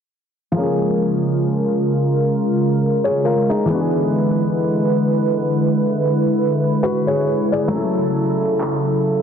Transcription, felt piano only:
0.52 3.63 F3 medium
0.52 3.64 G#3 medium
0.56 3.65 A#3 medium
0.56 3.66 C#4 medium
0.60 2.78 G#4 medium
3.04 3.24 G#4 soft
3.04 3.23 C#5 medium
3.25 3.48 F4 medium
3.25 3.47 A#4 medium
3.49 3.91 D#4 medium
3.49 3.79 G#4 medium
3.65 7.21 E3 medium
3.65 7.22 G#3 medium
3.70 7.23 B3 medium
3.70 7.24 D4 medium
3.74 3.78 F#4 medium
3.80 6.84 G#4 medium
6.83 7.06 F#4 medium
6.83 7.05 B4 medium
7.07 7.50 G#4 medium
7.07 7.49 C#5 medium
7.52 7.94 G#4 medium
7.52 7.94 D5 medium
7.68 9.22 F#3 medium
7.68 9.22 A3 medium
7.73 9.22 C#4 medium
7.73 9.22 E4 medium
7.77 9.22 A4 medium

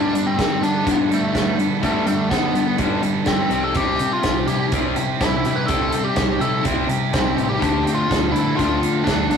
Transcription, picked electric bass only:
0.00 0.13 G2 medium
0.14 0.36 G3 medium
0.39 0.61 G2 medium
0.62 0.85 G3 medium
0.88 1.10 G2 medium
1.11 1.33 G3 medium
1.35 1.57 G2 medium
1.58 1.81 G3 medium
1.83 2.06 G2 medium
2.06 2.29 G3 medium
2.32 2.54 G2 medium
2.55 2.77 G3 medium
2.79 3.02 G2 medium
3.03 3.26 G3 medium
3.28 3.50 G2 medium
3.51 3.74 C2 medium
3.76 3.98 C2 medium
4.00 4.23 C3 medium
4.24 4.47 C2 medium
4.48 4.71 C3 medium
4.73 4.95 C2 medium
4.97 5.19 C3 medium
5.22 5.44 C2 medium
5.46 5.68 C3 medium
5.70 5.92 C2 medium
5.93 6.16 C3 medium
6.18 6.40 C2 medium
6.40 6.63 C3 medium
6.66 6.87 C2 medium
6.88 7.11 C3 medium
7.14 7.36 C2 medium
7.36 7.59 A1 medium
7.62 7.83 D2 medium
7.84 8.07 D3 medium
8.11 8.32 D2 medium
8.33 8.56 D3 medium
8.59 8.81 D2 medium
8.82 9.04 D3 medium
9.07 9.29 D2 medium
9.29 9.37 B1 medium

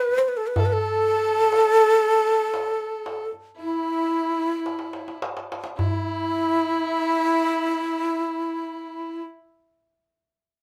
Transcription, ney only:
0.00 0.20 B4 loud
0.18 0.30 C5 medium
0.28 0.38 B4 medium
0.37 0.49 A4 medium
0.47 0.61 B4 medium
0.60 0.67 A4 medium
0.65 0.74 B4 medium
0.73 3.28 A4 loud
3.60 5.18 E4 medium
5.79 9.23 E4 medium

